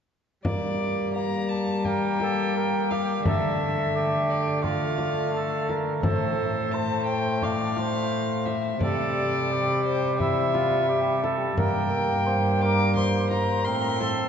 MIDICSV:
0, 0, Header, 1, 6, 480
1, 0, Start_track
1, 0, Tempo, 697674
1, 310, Time_signature, 4, 2, 24, 8
1, 4629, Tempo, 692841
1, 9865, End_track
2, 0, Start_track
2, 0, Title_t, "Violin"
2, 0, Program_c, 0, 40
2, 310, Note_on_c, 0, 74, 73
2, 765, Note_off_c, 0, 74, 0
2, 785, Note_on_c, 0, 82, 76
2, 1023, Note_on_c, 0, 81, 76
2, 1033, Note_off_c, 0, 82, 0
2, 1270, Note_on_c, 0, 79, 77
2, 1281, Note_off_c, 0, 81, 0
2, 1996, Note_on_c, 0, 77, 67
2, 2006, Note_off_c, 0, 79, 0
2, 2229, Note_off_c, 0, 77, 0
2, 2233, Note_on_c, 0, 76, 78
2, 2955, Note_on_c, 0, 74, 68
2, 2965, Note_off_c, 0, 76, 0
2, 3194, Note_off_c, 0, 74, 0
2, 3199, Note_on_c, 0, 77, 70
2, 3901, Note_off_c, 0, 77, 0
2, 4149, Note_on_c, 0, 72, 75
2, 4619, Note_on_c, 0, 81, 76
2, 4629, Note_off_c, 0, 72, 0
2, 4855, Note_off_c, 0, 81, 0
2, 4859, Note_on_c, 0, 79, 77
2, 5113, Note_on_c, 0, 77, 79
2, 5123, Note_off_c, 0, 79, 0
2, 5825, Note_on_c, 0, 76, 71
2, 5835, Note_off_c, 0, 77, 0
2, 6068, Note_off_c, 0, 76, 0
2, 6075, Note_on_c, 0, 74, 83
2, 6779, Note_off_c, 0, 74, 0
2, 6797, Note_on_c, 0, 72, 78
2, 7024, Note_off_c, 0, 72, 0
2, 7029, Note_on_c, 0, 76, 77
2, 7735, Note_off_c, 0, 76, 0
2, 7994, Note_on_c, 0, 79, 83
2, 8707, Note_on_c, 0, 86, 90
2, 8717, Note_off_c, 0, 79, 0
2, 8941, Note_off_c, 0, 86, 0
2, 8945, Note_on_c, 0, 84, 80
2, 9178, Note_off_c, 0, 84, 0
2, 9182, Note_on_c, 0, 82, 88
2, 9419, Note_on_c, 0, 84, 96
2, 9429, Note_off_c, 0, 82, 0
2, 9865, Note_off_c, 0, 84, 0
2, 9865, End_track
3, 0, Start_track
3, 0, Title_t, "Cor anglais"
3, 0, Program_c, 1, 69
3, 1285, Note_on_c, 1, 70, 64
3, 1527, Note_on_c, 1, 69, 57
3, 1537, Note_off_c, 1, 70, 0
3, 1756, Note_off_c, 1, 69, 0
3, 1760, Note_on_c, 1, 70, 63
3, 2003, Note_on_c, 1, 67, 61
3, 2013, Note_off_c, 1, 70, 0
3, 2239, Note_off_c, 1, 67, 0
3, 2248, Note_on_c, 1, 69, 58
3, 2711, Note_off_c, 1, 69, 0
3, 2721, Note_on_c, 1, 67, 60
3, 3191, Note_on_c, 1, 65, 62
3, 3201, Note_off_c, 1, 67, 0
3, 3672, Note_off_c, 1, 65, 0
3, 3675, Note_on_c, 1, 69, 58
3, 3910, Note_on_c, 1, 70, 63
3, 3920, Note_off_c, 1, 69, 0
3, 4149, Note_off_c, 1, 70, 0
3, 4153, Note_on_c, 1, 69, 59
3, 4636, Note_on_c, 1, 72, 64
3, 4646, Note_off_c, 1, 69, 0
3, 5118, Note_on_c, 1, 74, 65
3, 5128, Note_off_c, 1, 72, 0
3, 5355, Note_off_c, 1, 74, 0
3, 5364, Note_on_c, 1, 72, 66
3, 5875, Note_off_c, 1, 72, 0
3, 6077, Note_on_c, 1, 69, 63
3, 6557, Note_on_c, 1, 67, 58
3, 6567, Note_off_c, 1, 69, 0
3, 7031, Note_off_c, 1, 67, 0
3, 7035, Note_on_c, 1, 64, 63
3, 7263, Note_off_c, 1, 64, 0
3, 7267, Note_on_c, 1, 65, 60
3, 7504, Note_off_c, 1, 65, 0
3, 7509, Note_on_c, 1, 67, 60
3, 7745, Note_off_c, 1, 67, 0
3, 7748, Note_on_c, 1, 69, 65
3, 7980, Note_off_c, 1, 69, 0
3, 7984, Note_on_c, 1, 70, 71
3, 8458, Note_off_c, 1, 70, 0
3, 8463, Note_on_c, 1, 72, 76
3, 8702, Note_off_c, 1, 72, 0
3, 8718, Note_on_c, 1, 70, 66
3, 8949, Note_off_c, 1, 70, 0
3, 8953, Note_on_c, 1, 72, 78
3, 9413, Note_off_c, 1, 72, 0
3, 9417, Note_on_c, 1, 70, 69
3, 9658, Note_off_c, 1, 70, 0
3, 9671, Note_on_c, 1, 69, 68
3, 9865, Note_off_c, 1, 69, 0
3, 9865, End_track
4, 0, Start_track
4, 0, Title_t, "Bassoon"
4, 0, Program_c, 2, 70
4, 310, Note_on_c, 2, 58, 54
4, 765, Note_off_c, 2, 58, 0
4, 794, Note_on_c, 2, 58, 56
4, 1265, Note_off_c, 2, 58, 0
4, 1275, Note_on_c, 2, 58, 57
4, 2216, Note_off_c, 2, 58, 0
4, 2230, Note_on_c, 2, 57, 54
4, 3172, Note_off_c, 2, 57, 0
4, 3192, Note_on_c, 2, 57, 57
4, 4133, Note_off_c, 2, 57, 0
4, 4153, Note_on_c, 2, 57, 52
4, 4518, Note_off_c, 2, 57, 0
4, 4635, Note_on_c, 2, 57, 61
4, 5857, Note_off_c, 2, 57, 0
4, 6081, Note_on_c, 2, 55, 59
4, 7009, Note_off_c, 2, 55, 0
4, 7038, Note_on_c, 2, 55, 62
4, 7974, Note_off_c, 2, 55, 0
4, 7994, Note_on_c, 2, 58, 60
4, 9402, Note_off_c, 2, 58, 0
4, 9436, Note_on_c, 2, 60, 67
4, 9865, Note_off_c, 2, 60, 0
4, 9865, End_track
5, 0, Start_track
5, 0, Title_t, "Cello"
5, 0, Program_c, 3, 42
5, 313, Note_on_c, 3, 55, 64
5, 2208, Note_off_c, 3, 55, 0
5, 2238, Note_on_c, 3, 50, 59
5, 4127, Note_off_c, 3, 50, 0
5, 4158, Note_on_c, 3, 45, 63
5, 6047, Note_off_c, 3, 45, 0
5, 6076, Note_on_c, 3, 48, 62
5, 7964, Note_off_c, 3, 48, 0
5, 7993, Note_on_c, 3, 43, 71
5, 9436, Note_on_c, 3, 45, 64
5, 9446, Note_off_c, 3, 43, 0
5, 9865, Note_off_c, 3, 45, 0
5, 9865, End_track
6, 0, Start_track
6, 0, Title_t, "Frame drum"
6, 308, Note_on_c, 9, 64, 68
6, 376, Note_off_c, 9, 64, 0
6, 1270, Note_on_c, 9, 64, 42
6, 1339, Note_off_c, 9, 64, 0
6, 1514, Note_on_c, 9, 64, 49
6, 1583, Note_off_c, 9, 64, 0
6, 2003, Note_on_c, 9, 64, 46
6, 2071, Note_off_c, 9, 64, 0
6, 2239, Note_on_c, 9, 64, 68
6, 2308, Note_off_c, 9, 64, 0
6, 3192, Note_on_c, 9, 64, 43
6, 3260, Note_off_c, 9, 64, 0
6, 3428, Note_on_c, 9, 64, 46
6, 3497, Note_off_c, 9, 64, 0
6, 3917, Note_on_c, 9, 64, 45
6, 3985, Note_off_c, 9, 64, 0
6, 4150, Note_on_c, 9, 64, 68
6, 4219, Note_off_c, 9, 64, 0
6, 5110, Note_on_c, 9, 64, 40
6, 5179, Note_off_c, 9, 64, 0
6, 5350, Note_on_c, 9, 64, 48
6, 5419, Note_off_c, 9, 64, 0
6, 5829, Note_on_c, 9, 64, 46
6, 5899, Note_off_c, 9, 64, 0
6, 6068, Note_on_c, 9, 64, 68
6, 6137, Note_off_c, 9, 64, 0
6, 7035, Note_on_c, 9, 64, 43
6, 7104, Note_off_c, 9, 64, 0
6, 7273, Note_on_c, 9, 64, 48
6, 7342, Note_off_c, 9, 64, 0
6, 7753, Note_on_c, 9, 64, 45
6, 7822, Note_off_c, 9, 64, 0
6, 7987, Note_on_c, 9, 64, 74
6, 8056, Note_off_c, 9, 64, 0
6, 8950, Note_on_c, 9, 64, 41
6, 9019, Note_off_c, 9, 64, 0
6, 9190, Note_on_c, 9, 64, 49
6, 9260, Note_off_c, 9, 64, 0
6, 9671, Note_on_c, 9, 64, 49
6, 9740, Note_off_c, 9, 64, 0
6, 9865, End_track
0, 0, End_of_file